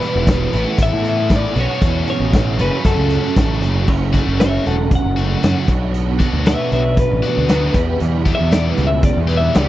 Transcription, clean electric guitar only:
0.00 0.82 B4 medium
0.83 1.07 E5 loud
1.09 1.33 E5 medium
1.36 1.60 D5 medium
1.60 2.09 C#5 medium
2.10 2.62 C#5 medium
2.61 2.86 B4 medium
2.86 3.59 A4 medium
4.40 4.66 C#5 medium
4.40 4.66 E5 medium
4.67 4.90 A4 medium
4.67 4.91 F#5 medium
4.95 5.94 F#5 medium
6.47 6.72 B4 medium
6.47 6.72 E5 medium
6.73 6.97 B4 medium
6.73 6.98 E5 medium
6.99 7.99 B4 loud
8.35 8.52 E5 medium
8.53 8.70 D5 medium
8.70 8.87 B4 medium
8.87 9.04 E5 medium
9.05 9.21 D5 medium
9.21 9.38 B4 medium
9.37 9.55 E5 medium
9.58 9.69 D5 medium

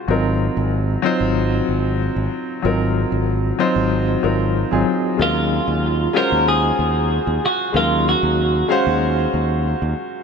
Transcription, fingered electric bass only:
0.08 0.48 G#1 medium
0.57 0.96 G#1 medium
1.21 1.60 G#1 medium
1.69 2.08 G#1 medium
2.16 2.27 G#1 medium
2.65 3.04 G#1 medium
3.12 3.51 G#1 medium
3.76 4.15 G#1 medium
4.24 4.63 G#1 medium
4.73 4.83 G#1 medium
5.19 5.58 D#2 medium
5.68 6.07 D#2 medium
6.32 6.71 D#2 medium
6.79 7.18 D#2 medium
7.27 7.38 D#2 medium
7.74 8.14 D#2 medium
8.23 8.62 D#2 medium
8.87 9.26 D#2 medium
9.34 9.73 D#2 medium
9.82 9.93 D#2 medium

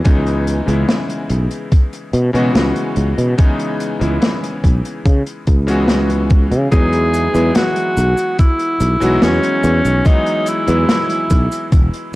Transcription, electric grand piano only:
0.04 0.63 C#3 medium
0.04 0.63 E3 medium
0.04 0.63 G#3 medium
0.04 0.63 B3 medium
0.04 0.63 D#4 medium
0.66 2.29 C#3 medium
0.66 2.29 E3 medium
0.66 2.30 G#3 medium
0.66 2.30 B3 medium
0.66 2.30 E4 medium
2.33 3.33 C#3 medium
2.33 3.33 E3 medium
2.33 3.34 G#3 medium
2.33 3.34 B3 medium
2.33 3.35 F#4 loud
3.38 3.96 C#3 medium
3.38 3.96 E3 medium
3.38 3.96 G#3 medium
3.38 3.97 B3 medium
3.38 3.97 D#4 medium
3.99 5.62 C#3 medium
3.99 5.63 E3 medium
3.99 5.63 G#3 medium
3.99 5.63 B3 medium
3.99 5.64 E4 medium
5.67 6.66 C#3 medium
5.67 6.67 E3 medium
5.67 6.67 G#3 medium
5.67 6.68 B3 medium
5.67 6.68 F#4 loud
6.71 7.29 E3 medium
6.71 7.30 F#3 medium
6.71 7.30 G#3 medium
6.71 7.30 B3 medium
6.71 7.30 D#4 medium
7.33 8.96 E3 medium
7.33 8.96 F#3 medium
7.33 8.96 G#3 medium
7.33 8.97 B3 medium
7.33 8.97 E4 medium
9.00 10.00 E3 medium
9.00 10.00 F#3 medium
9.00 10.01 G#3 medium
9.00 10.01 B3 medium
9.00 10.01 F#4 loud
10.05 10.63 E3 medium
10.05 10.63 F#3 medium
10.05 10.63 G#3 medium
10.05 10.63 B3 medium
10.05 10.64 D#4 medium
10.67 12.15 E3 medium
10.67 12.15 F#3 medium
10.67 12.15 G#3 medium
10.67 12.15 B3 medium
10.67 12.15 E4 medium

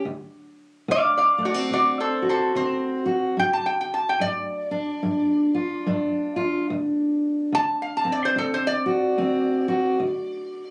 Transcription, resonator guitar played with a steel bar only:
0.91 1.16 D5 medium
0.91 1.17 F5 medium
1.18 1.43 D5 medium
1.18 1.45 F5 medium
1.45 1.71 F#4 medium
1.45 1.72 D5 medium
1.73 1.99 F#4 medium
1.73 2.00 D5 medium
2.00 2.26 A4 medium
2.00 2.27 C5 medium
2.29 2.54 A4 medium
2.29 2.55 C5 medium
2.56 3.04 C5 medium
3.39 3.53 G5 medium
3.53 3.65 A5 medium
3.66 3.80 G5 medium
3.81 3.89 G5 medium
3.94 4.10 A5 medium
4.09 4.20 G5 medium
4.21 5.83 D5 medium
7.55 7.81 A5 loud
7.82 8.03 F5 medium
7.97 8.05 A5 medium
8.12 8.26 D5 medium
8.25 8.36 C5 medium
8.38 8.53 A4 medium
8.54 8.64 C5 medium
8.67 10.71 D5 medium

